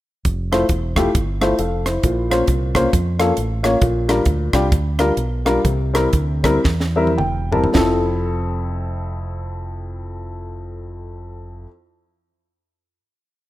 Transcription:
0.25 fingered electric bass F1, kick, closed hi-hat
0.52 upright piano A3 E4 F4 C5, cross-stick, closed hi-hat
0.69 fingered electric bass E1, kick, closed hi-hat
0.96 upright piano A3 E4 F4 G4, kick, cross-stick, closed hi-hat
1.15 fingered electric bass G1, kick, closed hi-hat
1.41 upright piano A3 E4 F4 C5, cross-stick, closed hi-hat
1.59 fingered electric bass F1, upright piano A4 F5, closed hi-hat
1.86 upright piano E4 C5, cross-stick, closed hi-hat
2.03 fingered electric bass A#1, upright piano A#2, kick, closed hi-hat
2.30 upright piano A#3 C#4 F4 C5, cross-stick, closed hi-hat
2.48 fingered electric bass C2, kick, closed hi-hat
2.75 upright piano A#3 C#4 F4 C5, kick, cross-stick, closed hi-hat
2.93 fingered electric bass F2, kick, closed hi-hat
3.19 upright piano A#3 C#4 F4 A4, cross-stick, closed hi-hat
3.37 fingered electric bass A1, closed hi-hat
3.63 upright piano A#3 C#4 F4 C#5, cross-stick, closed hi-hat
3.81 fingered electric bass A#1, upright piano A#2, kick, closed hi-hat
4.08 upright piano G3 D4 F4 A#4, cross-stick, closed hi-hat
4.25 fingered electric bass D2, kick, closed hi-hat
4.53 fingered electric bass C2, upright piano G3 D4 F4 G4, kick, cross-stick, closed hi-hat
4.72 fingered electric bass D2, kick, closed hi-hat
4.99 upright piano G3 D4 F4 A#4, cross-stick, closed hi-hat
5.17 fingered electric bass B1, closed hi-hat
5.45 upright piano G3 D4 F4 A#4, cross-stick, closed hi-hat
5.65 fingered electric bass C2, upright piano C3, kick, closed hi-hat
5.93 upright piano G3 C4 E4 A#4, cross-stick, closed hi-hat
6.13 fingered electric bass D2, kick, closed hi-hat
6.44 upright piano G3 C4 E4 A#4, kick, cross-stick, closed hi-hat
6.64 fingered electric bass E2, kick, snare
6.80 snare
6.96 upright piano G3 C4 E4 A#4 E5
7.07 high tom
7.18 fingered electric bass E1, upright piano G5, mid tom
7.51 upright piano G3 C4 E4 A#4 A5, floor tom
7.64 floor tom
7.72 fingered electric bass F1, upright piano F2 F3 C4 E4, kick, snare
7.77 upright piano A4

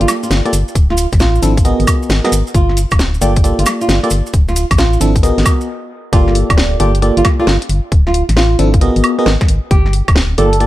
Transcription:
Already playing: fm electric piano A#3 F4 G4 A4 D5
0.01 fm bass G1, nylon-string guitar F4, closed hi-hat
0.08 snare, open hi-hat, high woodblock, maracas
0.23 nylon-string guitar F4, maracas
0.31 fm bass G1, snare, maracas
0.46 fm electric piano A#3 F4 G4 A4 D5, closed hi-hat
0.53 fm bass G1, open hi-hat, maracas
0.68 maracas
0.75 fm bass D1, kick, closed hi-hat, maracas
0.90 nylon-string guitar F4, snare
0.97 open hi-hat, maracas
1.12 fm bass A1, kick, snare, closed hi-hat, maracas
1.19 nylon-string guitar F4, snare, maracas
1.35 maracas
1.42 fm bass G#1, fm electric piano F3 C4 D4 E4 A4, open hi-hat, maracas
1.57 kick, closed hi-hat, maracas
1.65 fm electric piano B3 F#4 G#4 A#4 D#5, closed hi-hat, maracas
1.80 fm bass G#1, open hi-hat
1.87 kick, open hi-hat, high woodblock, maracas
2.03 maracas
2.10 fm bass G#1, snare, maracas
2.24 fm electric piano B3 F#4 G#4 A#4 D#5, snare, closed hi-hat
2.32 fm bass G#1, open hi-hat, maracas
2.47 maracas
2.54 fm bass G1, nylon-string guitar F4, kick, closed hi-hat, maracas
2.69 snare
2.77 open hi-hat, maracas
2.91 fm bass D1, kick, snare, closed hi-hat, high woodblock, maracas
2.99 snare, maracas
3.14 maracas
3.21 fm bass G1, fm electric piano A#3 F4 G4 A4 D5, nylon-string guitar G4, open hi-hat, maracas
3.36 kick, closed hi-hat, maracas
3.44 fm electric piano A#3 F4 G4 A4 D5, closed hi-hat, maracas
3.59 fm bass G1, nylon-string guitar F4, closed hi-hat
3.66 snare, open hi-hat, high woodblock, maracas
3.81 nylon-string guitar F4, maracas
3.89 fm bass G1, snare, maracas
4.04 fm electric piano A#3 F4 G4 A4 D5, closed hi-hat
4.10 fm bass G1, open hi-hat, maracas
4.26 maracas
4.34 fm bass D1, kick, closed hi-hat, maracas
4.48 nylon-string guitar F4, snare, maracas
4.56 open hi-hat, maracas
4.71 fm bass A1, kick, snare, closed hi-hat, high woodblock, maracas
4.78 nylon-string guitar F4, snare, closed hi-hat, maracas
4.93 maracas
5.01 fm bass G#1, fm electric piano F3 C4 D4 E4 A4, open hi-hat, maracas
5.16 kick, closed hi-hat, maracas
5.23 fm electric piano B3 F#4 G#4 A#4 D#5, closed hi-hat, maracas
5.38 fm bass G#1, snare, open hi-hat
5.46 kick, open hi-hat, high woodblock, maracas
5.61 maracas
6.13 fm bass G1, fm electric piano A#3 F4 G4 A4 D5, nylon-string guitar F4, kick, closed hi-hat
6.28 snare
6.35 open hi-hat
6.50 fm bass D1, kick, snare, closed hi-hat, high woodblock
6.58 snare
6.80 fm bass G1, fm electric piano A#3 F4 G4 A4 D5, nylon-string guitar G4, open hi-hat
6.95 closed hi-hat
7.02 fm electric piano A#3 F4 G4 A4 D5, closed hi-hat
7.17 fm bass G1, nylon-string guitar F4, closed hi-hat
7.25 kick, snare, open hi-hat, high woodblock
7.39 fm electric piano A#3 F4 G4 A4 D5, nylon-string guitar F4
7.47 fm bass G1, snare
7.62 closed hi-hat
7.69 fm bass G1, open hi-hat
7.92 fm bass D1, kick, closed hi-hat
8.07 nylon-string guitar F4, snare
8.14 open hi-hat
8.29 fm bass A1, snare, closed hi-hat
8.36 nylon-string guitar F4, snare
8.59 fm bass G#1, fm electric piano F3 C4 D4 E4 A4, open hi-hat
8.74 kick, closed hi-hat
8.81 fm electric piano B3 F#4 G#4 A#4 D#5, closed hi-hat
8.96 fm bass G#1, open hi-hat
9.04 open hi-hat, high woodblock
9.19 fm electric piano B3 F#4 G#4 A#4 D#5
9.26 fm bass G#1, snare
9.41 kick, snare, closed hi-hat
9.48 fm bass G#1, open hi-hat
9.71 fm bass G1, nylon-string guitar G4, kick, closed hi-hat
9.86 snare
9.93 open hi-hat
10.08 fm bass D1, kick, snare, closed hi-hat, high woodblock
10.16 snare
10.38 fm bass G1, fm electric piano A#3 F4 G4 A4 D5, nylon-string guitar A4, open hi-hat
10.53 closed hi-hat
10.60 fm electric piano A#3 F4 G4 A4 D5, closed hi-hat

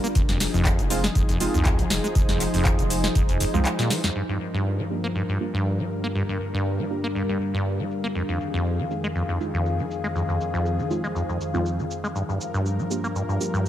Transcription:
Already playing: analog synth pad G3 F4 A#4, ambient pad D4 G4 A#4
0.04 acid bass A#3, cabasa
0.15 sub bass F1, acid bass F2, analog synth pad F3 D#4 G#4, ambient pad D#4, kick, closed hi-hat, cabasa
0.29 acid bass F2, snare, closed hi-hat, cabasa
0.36 ambient pad C5
0.40 snare, open hi-hat, cabasa
0.46 ambient pad G#4
0.54 sub bass F1, acid bass F2, cabasa
0.65 kick, clap, closed hi-hat, cabasa
0.79 sub bass F1, acid bass F3, closed hi-hat, cabasa
0.90 synth stab G#3 C4 D#4 F4, open hi-hat, cabasa
1.04 acid bass G#3, snare, closed hi-hat, cabasa
1.15 sub bass F1, acid bass F2, kick, closed hi-hat, cabasa
1.29 acid bass F2, closed hi-hat, cabasa
1.40 synth stab G#3 C4 D#4 F4, open hi-hat, cabasa
1.54 sub bass C2, acid bass F2, cabasa
1.65 kick, clap, closed hi-hat, cabasa
1.79 acid bass F3, closed hi-hat, cabasa
1.90 sub bass F1, snare, open hi-hat, cabasa
2.04 acid bass G#3, cabasa
2.15 sub bass F1, acid bass F2, kick, closed hi-hat, cabasa
2.29 acid bass F2, snare, closed hi-hat, cabasa
2.40 clap, open hi-hat, cabasa
2.54 sub bass F1, acid bass F2, open hi-hat, cabasa
2.65 kick, clap, closed hi-hat, cabasa
2.79 sub bass F1, acid bass F3, closed hi-hat, cabasa
2.90 open hi-hat, cabasa
3.04 acid bass G#3, snare, cabasa
3.15 sub bass F1, acid bass F2, kick, closed hi-hat, cabasa
3.29 acid bass F2, closed hi-hat, cabasa
3.40 acid bass F2, open hi-hat, cabasa
3.54 sub bass C2, acid bass F2, synth stab G#3 C4 D#4 F4, cabasa
3.65 clap, closed hi-hat, cabasa
3.79 acid bass A#2, snare, closed hi-hat, cabasa
3.90 acid bass F3, snare, open hi-hat, cabasa
4.04 acid bass F2, snare, closed hi-hat, cabasa
4.15 analog synth pad G2 F3 A#4, acid bass G2, ambient pad D4
4.22 ambient pad G4
4.29 acid bass G2, ambient pad F5, cabasa
4.53 acid bass G2, ambient pad A#4
4.66 cabasa
4.79 acid bass G3
4.90 synth stab A#3 D4 F4 G4, cabasa
5.04 acid bass A#3
5.15 acid bass G2
5.29 acid bass G2
5.40 synth stab A#3 D4 F4 G4, cabasa
5.54 acid bass G2
5.66 cabasa
5.79 acid bass G3
5.91 cabasa
6.04 acid bass A#3
6.15 acid bass G2, analog synth pad G3
6.29 acid bass G2
6.41 cabasa
6.54 acid bass G2
6.66 cabasa
6.79 acid bass G3, cabasa
6.90 synth stab A#3 D4 F4 G4, cabasa
7.04 acid bass A#3
7.15 acid bass G2, cabasa
7.29 acid bass G2
7.41 cabasa
7.54 acid bass G2
7.66 cabasa
7.79 acid bass G3, cabasa
7.91 cabasa
8.04 acid bass A#3
8.15 acid bass F2, analog synth pad F2 D#3 G#4, ambient pad D#4, cabasa
8.29 acid bass F2, cabasa
8.39 ambient pad C5, cabasa
8.43 ambient pad G#4
8.54 acid bass F2, cabasa
8.66 cabasa
8.79 acid bass F3, cabasa
8.90 synth stab G#3 C4 D#4 F4, cabasa
9.04 acid bass G#3, cabasa
9.15 acid bass F2, cabasa
9.29 acid bass F2, cabasa
9.40 synth stab G#3 C4 D#4 F4, cabasa
9.54 acid bass F2, cabasa
9.66 cabasa
9.79 acid bass F3, cabasa
9.91 cabasa
10.04 acid bass G#3, cabasa
10.15 acid bass F2, cabasa
10.29 acid bass F2, cabasa
10.41 cabasa
10.54 acid bass F2, cabasa
10.66 cabasa
10.79 acid bass F3, cabasa
10.90 synth stab G#3 C4 D#4 F4, cabasa
11.04 acid bass G#3, cabasa
11.15 acid bass F2, cabasa
11.29 acid bass F2, cabasa
11.41 cabasa
11.54 acid bass F2, synth stab G#3 C4 D#4 F4, cabasa
11.66 cabasa
11.79 acid bass F3, cabasa
11.91 cabasa
12.04 acid bass G#3, cabasa
12.15 acid bass G2, analog synth pad G2 F3 A#4, ambient pad D4, cabasa
12.29 acid bass G2, cabasa
12.41 cabasa
12.54 acid bass G2, ambient pad G4, cabasa
12.66 ambient pad A#4, cabasa
12.79 acid bass G3, cabasa
12.90 synth stab A#3 D4 F4 G4, cabasa
13.04 acid bass A#3, cabasa
13.15 acid bass G2, cabasa
13.29 acid bass G2, cabasa
13.40 synth stab A#3 D4 F4 G4, cabasa
13.54 acid bass G2, cabasa

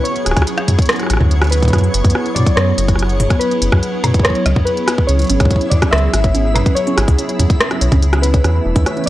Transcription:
Already playing: analog synth pad F#3 B3 E4 G#4, synth texture C#4 C#5
0.04 synth keys C#5, closed hi-hat
0.16 closed hi-hat
0.25 analog synth bass D1, synth keys G#4, cross-stick, closed hi-hat
0.31 cross-stick
0.37 analog synth bass D2, kick, cross-stick, closed hi-hat
0.42 cross-stick
0.47 closed hi-hat
0.58 cross-stick, closed hi-hat
0.68 analog synth bass F#2, closed hi-hat, mid tom
0.79 kick, closed hi-hat
0.82 closed hi-hat
0.86 cross-stick, closed hi-hat
0.89 closed hi-hat
0.92 closed hi-hat
0.96 cross-stick, closed hi-hat
0.99 cross-stick, closed hi-hat
1.06 cross-stick
1.10 analog synth bass A1, cross-stick, closed hi-hat
1.13 cross-stick
1.17 analog synth bass D2, cross-stick, mid tom
1.31 closed hi-hat
1.42 cross-stick, closed hi-hat
1.44 closed hi-hat
1.47 closed hi-hat
1.50 synth keys B4, closed hi-hat
1.52 closed hi-hat
1.55 closed hi-hat
1.57 closed hi-hat
1.60 kick, closed hi-hat
1.63 kick, closed hi-hat
1.68 kick, closed hi-hat
1.70 analog synth bass F#2, kick
1.73 kick, cross-stick, closed hi-hat
1.76 kick
1.78 kick, closed hi-hat
1.81 kick, closed hi-hat
1.94 analog synth bass F#1, closed hi-hat
2.04 analog synth bass F#2, kick, closed hi-hat
2.10 closed hi-hat
2.15 cross-stick
2.26 closed hi-hat
2.35 analog synth bass B2, synth keys D5, closed hi-hat, mid tom
2.46 kick, closed hi-hat
2.56 analog synth bass F#2, synth keys C#5, cross-stick, closed hi-hat
2.78 analog synth bass F#1, closed hi-hat
2.88 kick, cross-stick, closed hi-hat
2.96 cross-stick, closed hi-hat
3.03 cross-stick
3.09 closed hi-hat
3.20 closed hi-hat, mid tom
3.30 kick, cross-stick, closed hi-hat
3.39 synth keys B4, closed hi-hat
3.51 closed hi-hat
3.62 analog synth bass F#1, closed hi-hat
3.72 analog synth bass F#2, kick, cross-stick
3.83 closed hi-hat
4.04 analog synth bass B2, cross-stick, closed hi-hat, mid tom
4.14 kick, closed hi-hat
4.20 synth keys C#5, kick
4.25 kick, cross-stick, closed hi-hat
4.30 kick
4.35 closed hi-hat
4.46 analog synth bass C#2, cross-stick, closed hi-hat
4.56 kick, mid tom
4.65 synth keys B4, closed hi-hat
4.77 closed hi-hat
4.86 synth keys B4, cross-stick, closed hi-hat
4.98 kick
5.07 analog synth bass C#2, synth pluck C#4, synth texture E4 E5, synth keys C#5, closed hi-hat
5.19 synth pluck C#5, closed hi-hat
5.22 closed hi-hat
5.24 closed hi-hat
5.27 closed hi-hat
5.30 analog synth bass G#1, synth pluck C#4, closed hi-hat
5.40 analog synth bass C#2, synth pluck C#4, kick, cross-stick, closed hi-hat
5.45 kick
5.51 synth pluck C#4, kick, closed hi-hat
5.56 kick
5.61 synth pluck C#4, closed hi-hat
5.70 analog synth bass E2, synth pluck C#5, synth keys D5, closed hi-hat, mid tom
5.82 synth pluck C#4, kick, cross-stick, closed hi-hat
5.91 analog synth bass C#2, synth keys E5, cross-stick, closed hi-hat
5.98 closed hi-hat
6.03 synth pluck C#4
6.14 analog synth bass G#1, synth pluck C#4, cross-stick, closed hi-hat
6.24 synth pluck C#5, kick, closed hi-hat
6.34 synth pluck C#4, closed hi-hat
6.45 synth pluck C#4
6.54 synth pluck C#4, synth keys B4, cross-stick, closed hi-hat, mid tom
6.66 synth pluck C#4, kick, closed hi-hat
6.75 synth keys C#5, synth pluck C#5, closed hi-hat
6.87 synth pluck C#4, closed hi-hat
6.96 analog synth bass G#1, synth pluck C#4, synth keys G#4, cross-stick, closed hi-hat
7.08 analog synth bass C#2, synth pluck C#4, kick, closed hi-hat
7.19 synth pluck C#4, closed hi-hat
7.29 synth pluck C#5, closed hi-hat
7.39 analog synth bass E2, synth pluck C#4, closed hi-hat, mid tom
7.50 synth pluck C#4, kick, closed hi-hat
7.60 synth pluck C#4, cross-stick, closed hi-hat
7.71 synth pluck C#4, cross-stick, closed hi-hat
7.81 analog synth bass B1, synth pluck C#5, closed hi-hat
7.92 analog synth bass C#2, synth pluck C#4, kick, closed hi-hat, mid tom
8.02 synth pluck C#4, closed hi-hat
8.13 synth pluck C#4, cross-stick, closed hi-hat
8.22 synth pluck C#4, synth keys B4, closed hi-hat
8.34 synth pluck C#5, kick, closed hi-hat
8.44 analog synth bass E2, analog synth pad E3, synth pluck C#4, cross-stick, closed hi-hat
8.55 analog synth pad A3, synth pluck C#4
8.65 analog synth bass E1, synth pluck D4
8.76 analog synth bass E2, synth pluck C#4, kick, closed hi-hat
8.86 synth pluck C#5, cross-stick, closed hi-hat
8.97 synth pluck C#4, closed hi-hat
9.04 synth keys D5, closed hi-hat

